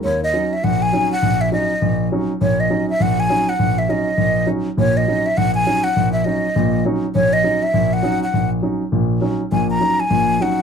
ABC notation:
X:1
M:4/4
L:1/8
Q:"Swing" 1/4=203
K:Ebphr
V:1 name="Flute"
d e2 f g a2 g- | g f e4 z2 | d e2 f g a2 g- | g f e4 z2 |
d e2 f g a2 g- | g f e4 z2 | d e2 f2 g2 g- | g z6 z |
a b2 a3 g2 |]
V:2 name="Grand piano" clef=bass
E,,2 [G,DE] z B,,,2 [G,DE] z | B,,,2 [G,DE] z B,,,2 [G,DE] z | B,,,2 [G,DE] z B,,,2 [G,DE] z | B,,,2 [G,DE] z B,,,2 [G,DE] z |
[B,,,B,,]2 [G,DE] z B,,,2 [G,DE] z | B,,,2 [G,DE] z [B,,,B,,]2 [G,DE] z | B,,,2 [G,DE] z B,,,2 [G,DE] z | B,,,2 [G,DE] z [B,,,B,,]2 [G,DE] z |
[B,,,B,,]2 [G,DE] z [B,,,B,,]2 [G,DE] z |]